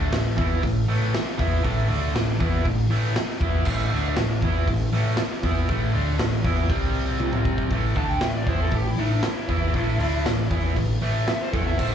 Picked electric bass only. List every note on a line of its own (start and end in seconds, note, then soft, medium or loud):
0.00 0.11 D2 loud
0.12 0.36 A1 medium
0.38 0.61 E2 loud
0.63 0.87 A1 medium
0.88 1.12 A1 medium
1.39 1.63 E2 loud
1.64 1.88 A1 loud
1.89 2.13 D2 loud
2.15 2.38 A1 medium
2.40 2.64 E2 medium
2.65 2.89 A1 medium
2.90 3.14 A1 medium
3.40 3.64 E2 loud
3.66 3.90 A1 loud
3.92 4.16 D2 loud
4.17 4.41 A1 medium
4.42 4.66 E2 loud
4.68 4.91 A1 medium
4.92 5.16 A1 loud
5.43 5.67 E2 loud
5.69 5.93 A1 loud
5.95 6.19 D2 loud
6.19 6.43 A1 medium
6.44 6.69 E2 loud
6.70 7.68 C2 medium
7.71 7.95 A1 loud
7.95 8.20 D2 loud
8.21 8.45 A1 medium
8.46 8.71 E2 loud
8.72 8.95 A1 medium
8.96 9.21 A1 loud
9.49 9.73 E2 loud
9.74 9.98 A1 loud
9.98 10.23 D2 loud
10.25 10.50 A1 medium
10.51 10.75 E2 loud
10.76 11.00 A1 medium
11.02 11.26 A1 medium
11.53 11.77 E2 loud
11.79 11.95 A1 loud